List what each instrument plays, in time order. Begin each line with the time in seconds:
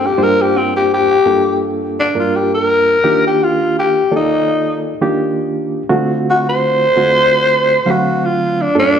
Already playing: reed electric piano G2 A#3 D4 F4 A4
0.06 tenor saxophone G4
0.18 reed electric piano G2 A#3 D4 F4 C5
0.23 tenor saxophone A#4
0.42 tenor saxophone G4
0.57 tenor saxophone C4
0.76 tenor saxophone G4
0.93 tenor saxophone G4
1.26 reed electric piano G2 A#3 D4 F4 A4
2.00 tenor saxophone D4
2.15 reed electric piano G2 A#3 D4 F4 A#4
2.19 tenor saxophone F4
2.36 tenor saxophone G4
2.54 tenor saxophone A#4
3.04 reed electric piano D#3 A#3 D4 F4 G4
3.27 tenor saxophone G4
3.44 tenor saxophone F4
3.79 tenor saxophone G4
4.11 reed electric piano D#3 A#3 F4 A4 D5
4.16 tenor saxophone D#4
5.01 reed electric piano D#3 A#3 D4 F4 G4
5.89 reed electric piano D3 A3 C4 F4 F#4
6.30 tenor saxophone F#4
6.49 tenor saxophone C5
6.96 reed electric piano D3 A3 C4 F4 F#4
7.86 reed electric piano D3 F#3 A3 C4 F5
7.91 tenor saxophone F#4
8.25 tenor saxophone F4
8.62 tenor saxophone D4
8.75 reed electric piano G2 A#3 D4 F4 A4, tenor saxophone D4